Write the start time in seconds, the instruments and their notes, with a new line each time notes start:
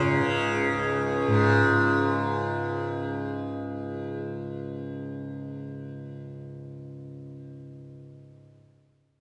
Already playing: tanpura C#2 G#2 C#3, sitar C#4
0.21 tanpura C#3
0.73 tanpura C#2
1.27 tanpura G#2